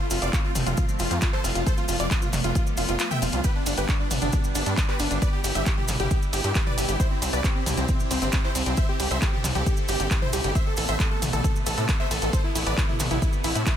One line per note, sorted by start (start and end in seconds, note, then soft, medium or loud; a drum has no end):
0.00 3.41 F3 medium
0.00 3.40 A3 medium
0.00 1.65 C4 medium
0.11 0.19 F1 loud
0.11 0.18 F4 medium
0.11 open hi-hat loud
0.11 maracas loud
0.22 0.30 F1 medium
0.22 0.29 F4 medium
0.22 0.29 D5 medium
0.22 closed hi-hat medium
0.22 maracas soft
0.33 0.40 F4 medium
0.33 kick loud
0.33 clap loud
0.33 closed hi-hat medium
0.33 maracas medium
0.44 0.51 F4 medium
0.55 0.63 F1 loud
0.55 open hi-hat loud
0.55 mid tom medium
0.55 maracas medium
0.66 0.74 F1 medium
0.66 0.73 F4 medium
0.66 closed hi-hat medium
0.66 mid tom medium
0.66 maracas soft
0.77 0.84 F4 medium
0.77 kick loud
0.77 closed hi-hat medium
0.77 mid tom medium
0.77 maracas medium
0.89 maracas soft
0.99 1.08 F1 medium
0.99 1.06 F4 medium
0.99 1.07 F4 medium
0.99 open hi-hat loud
0.99 maracas medium
1.11 1.19 F2 medium
1.11 1.18 F4 medium
1.11 closed hi-hat medium
1.11 maracas soft
1.22 1.29 F4 medium
1.22 kick loud
1.22 clap loud
1.22 closed hi-hat medium
1.22 maracas medium
1.33 1.40 A4 medium
1.33 1.40 C5 medium
1.33 clap soft
1.44 1.52 F1 medium
1.44 1.51 F4 medium
1.44 open hi-hat loud
1.44 maracas medium
1.55 1.63 F1 medium
1.55 1.62 F4 medium
1.55 closed hi-hat medium
1.55 maracas soft
1.66 6.96 B3 medium
1.66 1.73 A4 medium
1.66 1.73 C5 loud
1.66 kick loud
1.66 closed hi-hat medium
1.66 maracas medium
1.77 1.84 F4 medium
1.77 maracas soft
1.88 1.96 F1 loud
1.88 1.95 F4 medium
1.88 1.96 F4 medium
1.88 open hi-hat loud
1.88 maracas medium
2.00 2.08 F1 medium
2.00 2.07 F4 medium
2.00 2.06 D5 loud
2.00 2.07 D5 loud
2.00 closed hi-hat medium
2.00 maracas soft
2.11 2.18 F4 medium
2.11 kick loud
2.11 clap loud
2.11 closed hi-hat medium
2.11 maracas medium
2.22 2.29 F4 medium
2.22 mid tom medium
2.22 maracas soft
2.33 2.41 F1 loud
2.33 clap soft
2.33 open hi-hat loud
2.33 mid tom medium
2.33 maracas medium
2.44 2.52 F1 medium
2.44 2.51 F4 medium
2.44 closed hi-hat medium
2.44 mid tom medium
2.44 maracas soft
2.55 2.62 F4 medium
2.55 kick loud
2.55 closed hi-hat medium
2.55 maracas soft
2.67 maracas soft
2.77 2.85 F1 loud
2.77 2.84 F4 medium
2.77 open hi-hat loud
2.77 maracas medium
2.88 2.96 F1 medium
2.88 2.95 F4 medium
2.88 2.96 F4 medium
2.88 closed hi-hat medium
2.88 maracas soft
2.99 3.07 F4 medium
2.99 clap loud
2.99 closed hi-hat medium
2.99 maracas medium
3.11 3.18 E5 medium
3.11 3.18 G5 medium
3.11 mid tom medium
3.11 maracas soft
3.22 3.30 F1 loud
3.22 3.29 F4 medium
3.22 open hi-hat loud
3.22 maracas medium
3.32 3.41 C2 medium
3.32 3.40 F4 medium
3.32 closed hi-hat medium
3.32 maracas soft
3.44 6.96 G3 medium
3.44 5.20 D4 medium
3.44 3.51 G4 medium
3.44 3.51 B4 loud
3.44 kick loud
3.44 closed hi-hat medium
3.44 ride medium
3.44 maracas medium
3.56 3.62 D4 medium
3.66 3.74 G1 medium
3.66 3.73 D4 medium
3.66 open hi-hat loud
3.66 ride medium
3.66 maracas loud
3.78 3.85 G1 medium
3.78 3.84 G4 medium
3.78 3.84 B4 medium
3.78 3.84 B4 loud
3.78 closed hi-hat medium
3.78 maracas soft
3.89 3.96 D4 medium
3.89 kick loud
3.89 clap loud
3.89 closed hi-hat medium
3.89 ride medium
3.89 maracas medium
4.00 4.07 D4 medium
4.11 4.19 G1 loud
4.11 open hi-hat loud
4.11 mid tom medium
4.11 ride medium
4.11 maracas medium
4.22 4.30 G1 medium
4.22 4.29 D4 medium
4.22 closed hi-hat medium
4.22 mid tom medium
4.22 maracas soft
4.33 4.40 D4 medium
4.33 kick loud
4.33 closed hi-hat medium
4.33 mid tom medium
4.33 ride medium
4.33 maracas medium
4.44 maracas soft
4.55 4.63 G1 medium
4.55 4.62 D4 medium
4.55 open hi-hat loud
4.55 ride medium
4.55 maracas medium
4.66 4.74 G2 medium
4.66 4.73 D4 medium
4.66 closed hi-hat medium
4.66 maracas soft
4.77 4.84 D4 medium
4.77 kick loud
4.77 clap loud
4.77 closed hi-hat medium
4.77 ride medium
4.77 maracas medium
4.89 4.95 G4 medium
4.89 4.95 B4 medium
4.89 4.96 B4 loud
4.89 clap soft
4.99 5.08 G1 medium
4.99 5.06 D4 medium
4.99 5.07 D4 medium
4.99 open hi-hat loud
4.99 ride medium
4.99 maracas medium
5.11 5.19 G1 medium
5.11 5.17 D4 medium
5.11 5.18 D4 medium
5.11 closed hi-hat medium
5.11 maracas soft
5.22 10.51 E4 medium
5.22 5.29 B4 medium
5.22 5.29 D5 loud
5.22 kick loud
5.22 closed hi-hat medium
5.22 ride medium
5.22 maracas soft
5.33 5.40 G4 medium
5.44 5.52 G1 loud
5.44 5.51 G4 medium
5.44 open hi-hat loud
5.44 ride medium
5.44 maracas loud
5.55 5.63 G1 medium
5.55 5.62 G4 medium
5.55 5.62 E5 loud
5.55 5.62 E5 medium
5.55 closed hi-hat medium
5.55 maracas soft
5.66 5.73 G4 medium
5.66 kick loud
5.66 clap loud
5.66 closed hi-hat medium
5.66 ride medium
5.66 maracas medium
5.78 5.84 G4 medium
5.78 mid tom medium
5.88 5.96 G1 medium
5.88 clap soft
5.88 open hi-hat loud
5.88 mid tom medium
5.88 ride medium
5.88 maracas loud
6.00 6.08 G1 medium
6.00 6.07 G4 medium
6.00 closed hi-hat medium
6.00 mid tom medium
6.00 maracas soft
6.11 6.18 G4 medium
6.11 kick loud
6.11 closed hi-hat medium
6.11 ride medium
6.11 maracas soft
6.22 maracas soft
6.33 6.41 G1 loud
6.33 6.40 G4 medium
6.33 open hi-hat loud
6.33 ride medium
6.33 maracas loud
6.44 6.52 G2 medium
6.44 6.51 G4 medium
6.44 closed hi-hat medium
6.44 maracas soft
6.55 6.62 G4 medium
6.55 kick loud
6.55 clap loud
6.55 closed hi-hat medium
6.55 ride medium
6.55 maracas medium
6.66 6.73 B4 medium
6.66 6.73 D5 medium
6.66 mid tom medium
6.77 6.85 G1 loud
6.77 6.84 G4 medium
6.77 6.85 G4 medium
6.77 open hi-hat loud
6.77 ride medium
6.77 maracas medium
6.88 6.96 G1 medium
6.88 6.95 G4 medium
6.88 6.96 G4 medium
6.88 closed hi-hat medium
6.88 maracas soft
7.00 13.77 C3 medium
7.00 10.52 C4 medium
7.00 7.07 E4 medium
7.00 8.76 G4 medium
7.00 7.06 C5 loud
7.00 7.07 C5 loud
7.00 kick loud
7.00 closed hi-hat medium
7.00 ride medium
7.00 maracas medium
7.11 7.18 C4 medium
7.22 7.30 C2 medium
7.22 7.29 C4 medium
7.22 open hi-hat loud
7.22 ride medium
7.22 maracas loud
7.33 7.41 C2 medium
7.33 7.40 B4 medium
7.33 7.40 D5 medium
7.33 closed hi-hat medium
7.33 maracas soft
7.44 7.51 C4 medium
7.44 kick loud
7.44 clap loud
7.44 closed hi-hat medium
7.44 ride medium
7.44 maracas medium
7.55 7.62 C4 medium
7.66 7.74 C2 loud
7.66 open hi-hat loud
7.66 mid tom medium
7.66 ride medium
7.66 maracas medium
7.77 7.85 C2 medium
7.77 7.84 C4 medium
7.77 closed hi-hat medium
7.77 mid tom medium
7.77 maracas soft
7.88 7.95 C4 medium
7.88 kick loud
7.88 closed hi-hat medium
7.88 mid tom medium
7.88 ride medium
7.88 maracas medium
8.00 maracas soft
8.11 8.19 C2 loud
8.11 8.18 C4 medium
8.11 open hi-hat loud
8.11 ride medium
8.11 maracas medium
8.22 8.30 G1 medium
8.22 8.29 C4 medium
8.22 closed hi-hat medium
8.22 maracas soft
8.32 8.40 C4 medium
8.32 kick loud
8.32 clap loud
8.32 closed hi-hat medium
8.32 ride medium
8.32 maracas medium
8.44 8.51 E4 medium
8.44 8.51 C5 medium
8.44 clap soft
8.55 8.63 C2 loud
8.55 8.62 C4 medium
8.55 open hi-hat loud
8.55 ride medium
8.55 maracas loud
8.66 8.74 C2 medium
8.66 8.73 C4 medium
8.66 closed hi-hat medium
8.66 maracas soft
8.77 10.54 A4 medium
8.77 8.84 C5 medium
8.77 8.84 E5 loud
8.77 8.85 E5 loud
8.77 kick loud
8.77 closed hi-hat medium
8.77 ride medium
8.77 maracas medium
8.89 8.96 G4 medium
9.00 9.08 C2 medium
9.00 9.07 G4 medium
9.00 open hi-hat loud
9.00 ride medium
9.00 maracas medium
9.11 9.19 C2 medium
9.11 9.18 C5 medium
9.11 9.18 E5 loud
9.11 9.18 E5 medium
9.11 closed hi-hat medium
9.11 maracas soft
9.22 9.29 G4 medium
9.22 kick loud
9.22 clap loud
9.22 closed hi-hat medium
9.22 ride medium
9.22 maracas medium
9.33 9.40 G4 medium
9.33 mid tom medium
9.44 9.52 C2 loud
9.44 clap soft
9.44 open hi-hat loud
9.44 mid tom medium
9.44 ride medium
9.44 maracas loud
9.55 9.63 C2 medium
9.55 9.62 G4 medium
9.55 closed hi-hat medium
9.55 mid tom medium
9.55 maracas soft
9.66 9.73 G4 medium
9.66 kick loud
9.66 closed hi-hat medium
9.66 ride medium
9.66 maracas medium
9.77 maracas soft
9.88 9.96 G1 loud
9.88 9.96 G4 medium
9.88 open hi-hat loud
9.88 ride medium
9.88 maracas loud
10.00 10.08 G1 medium
10.00 10.07 G4 medium
10.00 closed hi-hat medium
10.00 maracas soft
10.11 10.18 G4 medium
10.11 kick loud
10.11 clap loud
10.11 closed hi-hat medium
10.11 ride medium
10.11 maracas medium
10.22 10.29 E4 medium
10.22 10.29 C5 medium
10.22 mid tom medium
10.33 10.41 C2 medium
10.33 10.40 G4 medium
10.33 open hi-hat loud
10.33 ride medium
10.33 maracas loud
10.44 10.52 G1 medium
10.44 10.51 G4 medium
10.44 closed hi-hat medium
10.44 maracas soft
10.55 13.77 A3 medium
10.55 13.77 B3 medium
10.55 10.62 C5 medium
10.55 10.62 E5 loud
10.55 kick loud
10.55 closed hi-hat medium
10.55 ride medium
10.55 maracas medium
10.67 10.73 A4 medium
10.77 10.85 A1 medium
10.77 10.84 A4 medium
10.77 10.85 A4 medium
10.77 open hi-hat loud
10.77 ride medium
10.77 maracas loud
10.88 10.97 A1 medium
10.88 10.95 C5 medium
10.88 10.95 E5 medium
10.88 10.96 E5 medium
10.88 closed hi-hat medium
10.88 maracas soft
11.00 11.07 A4 medium
11.00 kick loud
11.00 clap loud
11.00 closed hi-hat medium
11.00 ride medium
11.00 maracas soft
11.11 11.18 A4 medium
11.22 11.30 A1 loud
11.22 open hi-hat loud
11.22 mid tom medium
11.22 ride medium
11.22 maracas loud
11.33 11.41 A1 medium
11.33 11.40 A4 medium
11.33 closed hi-hat medium
11.33 mid tom medium
11.33 maracas soft
11.44 11.51 A4 medium
11.44 kick loud
11.44 closed hi-hat medium
11.44 mid tom medium
11.44 ride medium
11.44 maracas medium
11.56 maracas soft
11.66 11.74 A1 medium
11.66 11.73 A4 medium
11.66 open hi-hat loud
11.66 ride medium
11.66 maracas loud
11.77 11.85 A2 medium
11.77 11.84 A4 medium
11.77 closed hi-hat medium
11.77 maracas soft
11.89 11.95 A4 medium
11.89 kick loud
11.89 clap loud
11.89 closed hi-hat medium
11.89 ride medium
11.89 maracas medium
12.00 12.07 C5 medium
12.00 12.07 E5 loud
12.00 12.07 E5 medium
12.00 clap soft
12.11 12.19 A1 medium
12.11 12.18 A4 medium
12.11 open hi-hat loud
12.11 ride medium
12.11 maracas medium
12.22 12.30 A1 medium
12.22 12.29 A4 medium
12.22 closed hi-hat medium
12.22 maracas soft
12.33 12.40 A4 medium
12.33 12.40 C5 loud
12.33 kick loud
12.33 closed hi-hat medium
12.33 ride medium
12.33 maracas medium
12.44 12.51 E4 medium
12.55 12.63 A1 medium
12.55 12.62 E4 medium
12.55 open hi-hat loud
12.55 ride medium
12.55 maracas medium
12.66 12.74 A1 medium
12.66 12.73 B4 medium
12.66 12.73 D5 loud
12.66 closed hi-hat medium
12.66 maracas soft
12.77 12.84 E4 medium
12.77 kick loud
12.77 clap loud
12.77 closed hi-hat medium
12.77 ride medium
12.77 maracas medium
12.89 12.95 E4 medium
12.89 mid tom medium
13.00 13.08 A1 loud
13.00 clap soft
13.00 open hi-hat loud
13.00 mid tom medium
13.00 ride medium
13.00 maracas medium
13.11 13.19 A1 medium
13.11 13.18 E4 medium
13.11 closed hi-hat medium
13.11 mid tom medium
13.11 maracas soft
13.22 13.29 E4 medium
13.22 kick loud
13.22 closed hi-hat medium
13.22 ride medium
13.22 maracas soft
13.33 maracas soft
13.44 13.52 A1 loud
13.44 13.51 E4 medium
13.44 open hi-hat loud
13.44 ride medium
13.44 maracas medium
13.55 13.63 A2 medium
13.55 13.62 E4 medium
13.55 closed hi-hat medium
13.55 maracas soft
13.66 13.73 E4 medium
13.66 kick loud
13.66 clap loud
13.66 closed hi-hat medium
13.66 ride medium
13.66 maracas medium